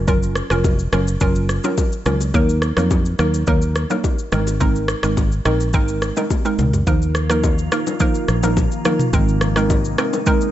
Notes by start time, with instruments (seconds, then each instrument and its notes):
Already playing: fingered electric bass F#1
0.08 synth pluck F#3 C#4 F4 A#4, kick, low conga, shaker
0.23 shaker
0.36 cross-stick, shaker
0.50 fingered electric bass F1, synth pluck F#3 C#4 F4 A#4, cross-stick, shaker
0.64 kick, high bongo, shaker
0.79 shaker
0.93 fingered electric bass F#1, synth pluck F#3 C#4 F4 A#4, cross-stick, shaker
1.08 shaker
1.21 fingered electric bass F#1, synth pluck F#3 C#4 F4 A#4, kick, low conga, shaker
1.35 shaker
1.49 cross-stick, shaker
1.64 synth pluck F#3 C#4 F4 A#4, low bongo, shaker
1.78 kick, high bongo, shaker
1.92 shaker
2.06 fingered electric bass C#2, synth pluck F#3 C#4 F4 A#4, cross-stick, low bongo, low conga, shaker
2.21 high bongo, shaker
2.34 fingered electric bass D#2, synth pluck F#3 A#3 D#4 A#4, kick, low conga, shaker
2.49 shaker
2.62 cross-stick, shaker
2.77 fingered electric bass F2, synth pluck F#3 A#3 D#4 A#4, cross-stick, shaker
2.91 kick, high bongo, shaker
3.06 shaker
3.19 fingered electric bass D#2, synth pluck F#3 A#3 D#4 A#4, cross-stick, shaker
3.34 shaker
3.47 fingered electric bass D#2, synth pluck F#3 A#3 D#4 A#4, kick, low conga, shaker
3.62 shaker
3.76 cross-stick, shaker
3.90 synth pluck F#3 A#3 D#4 A#4, low bongo, shaker
4.04 kick, high bongo, shaker
4.19 shaker
4.32 fingered electric bass G#1, synth pluck G#3 C4 D#4 A#4, cross-stick, low bongo, low conga, shaker
4.47 high bongo, shaker
4.60 synth pluck G#3 C4 D#4 A#4, kick, low conga, shaker
4.76 shaker
4.88 cross-stick, shaker
5.03 fingered electric bass G#1, synth pluck G#3 C4 D#4 A#4, cross-stick, shaker
5.17 kick, high bongo, shaker
5.32 shaker
5.45 fingered electric bass A#1, synth pluck G#3 C4 D#4 A#4, cross-stick, shaker
5.60 shaker
5.73 fingered electric bass G#1, synth pluck G#3 C4 D#4 A#4, kick, low conga, shaker
5.88 shaker
6.02 cross-stick, shaker
6.17 synth pluck G#3 C4 D#4 A#4, low bongo, shaker
6.30 kick, high tom, high bongo, shaker
6.45 synth pluck G#3 C4 D#4 A#4, shaker
6.59 fingered electric bass C#2, mid tom, low bongo, low conga, shaker
6.73 floor tom, high bongo, shaker
6.87 fingered electric bass D#2, ambient pad D#3 F3 A#3 F4, synth pluck F3 A#3 D#4 A#4, kick, low conga, shaker
7.02 shaker
7.15 cross-stick, shaker
7.30 synth pluck F3 A#3 D#4 A#4, cross-stick, shaker
7.44 kick, high bongo, shaker
7.58 shaker
7.72 synth pluck F3 A#3 D#4 A#4, cross-stick, shaker
7.87 low bongo, shaker
8.00 synth pluck F3 A#3 D#4 A#4, kick, low conga, shaker
8.15 shaker
8.28 fingered electric bass A#1, cross-stick, shaker
8.43 synth pluck F3 A#3 D#4 A#4, low bongo, shaker
8.57 kick, high bongo, low bongo, shaker
8.72 shaker
8.85 synth pluck F3 A#3 D#4 A#4, cross-stick, low bongo, low conga, shaker
8.99 mid tom, shaker
9.13 fingered electric bass G#1, ambient pad C3 G#3 D#4, synth pluck G#3 C4 D#4 A#4, kick, low conga, shaker
9.28 shaker
9.41 cross-stick, shaker
9.56 synth pluck G#3 C4 D#4 A#4, cross-stick, shaker
9.70 kick, high bongo, shaker
9.85 shaker
9.98 synth pluck G#3 C4 D#4 A#4, cross-stick, shaker
10.13 low bongo, shaker
10.26 synth pluck G#3 C4 D#4 A#4, kick, low conga, shaker
10.41 shaker